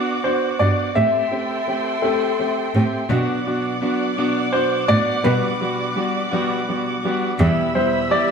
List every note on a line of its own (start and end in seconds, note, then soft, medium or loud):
0.00 0.15 B3 medium
0.00 0.15 D4 medium
0.00 0.15 F#4 medium
0.00 0.94 F#4 medium
0.00 0.94 D5 medium
0.00 0.94 F#5 medium
0.00 0.94 D6 medium
0.24 0.51 B3 medium
0.24 0.51 D4 medium
0.24 0.51 F#4 medium
0.24 0.58 C5 medium
0.59 0.68 G2 medium
0.59 0.86 B3 medium
0.59 0.86 D4 medium
0.59 0.86 F#4 medium
0.59 0.93 D5 medium
0.95 1.04 A2 medium
0.95 1.22 A3 medium
0.95 1.22 C4 medium
0.95 1.22 G4 medium
0.95 3.08 A4 medium
0.95 2.06 E5 medium
0.95 3.08 E5 medium
0.95 3.09 G5 medium
0.95 3.09 C6 medium
1.31 1.58 A3 medium
1.31 1.58 C4 medium
1.31 1.58 G4 medium
1.68 1.94 A3 medium
1.68 1.94 C4 medium
1.68 1.94 G4 medium
2.02 2.29 A3 medium
2.02 2.29 C4 medium
2.02 2.30 G4 medium
2.02 2.79 A4 medium
2.39 2.65 A3 medium
2.39 2.65 C4 medium
2.39 2.65 G4 medium
2.74 2.82 A2 medium
2.74 3.01 A3 medium
2.74 3.01 C4 medium
2.74 3.01 G4 medium
3.09 3.81 B2 medium
3.09 3.18 B2 medium
3.09 3.80 F#3 medium
3.09 3.81 B3 medium
3.09 3.36 B3 medium
3.09 3.37 D4 medium
3.09 3.82 D4 medium
3.09 3.83 F#4 medium
3.09 3.37 F#4 medium
3.09 5.22 D5 medium
3.09 7.35 F#5 medium
3.09 7.35 D6 medium
3.47 3.73 B3 medium
3.47 3.73 D4 medium
3.47 3.73 F#4 medium
3.81 4.17 F#3 medium
3.81 4.08 B3 medium
3.81 4.18 B3 medium
3.81 4.08 D4 medium
3.81 4.16 D4 medium
3.81 4.08 F#4 medium
3.81 4.15 F#4 medium
4.17 4.89 B2 medium
4.17 5.24 F#3 medium
4.17 4.44 B3 medium
4.17 4.89 D4 medium
4.17 4.44 D4 medium
4.17 4.87 F#4 medium
4.17 4.44 F#4 medium
4.53 4.79 B3 medium
4.53 4.80 D4 medium
4.53 4.80 F#4 medium
4.53 4.90 C5 medium
4.88 4.97 A2 medium
4.88 5.15 B3 medium
4.88 5.23 B3 soft
4.88 5.15 D4 medium
4.88 5.24 D4 soft
4.88 5.24 F#4 soft
4.88 5.15 F#4 medium
4.88 5.26 D5 loud
5.23 5.96 B2 medium
5.23 5.33 B2 loud
5.23 5.94 G3 medium
5.23 5.51 G3 medium
5.23 5.95 B3 medium
5.23 5.51 B3 medium
5.23 5.95 D4 medium
5.23 5.96 F#4 medium
5.23 5.51 F#4 medium
5.23 6.99 B4 medium
5.23 7.37 D5 medium
5.60 5.87 G3 medium
5.60 5.87 B3 medium
5.60 5.87 F#4 medium
5.95 6.31 G3 soft
5.95 6.22 G3 medium
5.95 6.31 B3 medium
5.95 6.22 B3 medium
5.95 6.30 D4 medium
5.95 6.23 F#4 medium
5.95 6.30 F#4 medium
6.31 7.04 B2 medium
6.31 7.06 G3 medium
6.31 6.58 G3 medium
6.31 7.05 B3 medium
6.31 6.58 B3 medium
6.31 7.03 D4 medium
6.31 7.01 F#4 medium
6.31 6.58 F#4 medium
6.69 6.94 G3 medium
6.69 6.94 B3 medium
6.69 6.95 F#4 medium
7.03 7.30 G3 medium
7.03 7.30 B3 medium
7.03 7.39 B3 medium
7.03 7.39 D4 soft
7.03 7.39 F#4 medium
7.03 7.30 F#4 medium
7.39 8.10 E2 medium
7.39 7.47 E2 loud
7.39 8.11 B2 medium
7.39 8.09 E3 medium
7.39 8.11 G3 medium
7.39 7.66 G3 medium
7.39 7.66 B3 medium
7.39 8.11 E4 medium
7.39 7.66 E4 medium
7.39 8.31 G4 medium
7.39 8.12 G4 medium
7.39 8.31 E5 medium
7.39 8.31 B5 medium
7.39 8.31 E6 medium
7.75 8.01 G3 medium
7.75 8.01 B3 medium
7.75 8.02 E4 medium
7.75 8.08 C5 medium
8.10 8.31 E3 medium
8.10 8.31 G3 medium
8.10 8.31 B3 medium
8.10 8.31 E4 medium
8.10 8.31 G4 medium
8.10 8.31 D5 medium